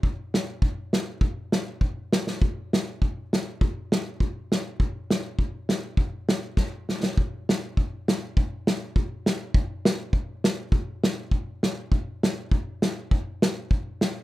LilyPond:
\new DrumStaff \with { instrumentName = "Drums" } \drummode { \time 2/4 \tempo 4 = 101 bd8 sn8 bd8 sn8 | bd8 sn8 bd8 sn16 sn16 | bd8 sn8 bd8 sn8 | bd8 sn8 bd8 sn8 |
bd8 sn8 bd8 sn8 | bd8 sn8 <bd sn>8 sn16 sn16 | bd8 sn8 bd8 sn8 | bd8 sn8 bd8 sn8 |
bd8 sn8 bd8 sn8 | bd8 sn8 bd8 sn8 | bd8 sn8 bd8 sn8 | bd8 sn8 bd8 sn8 | }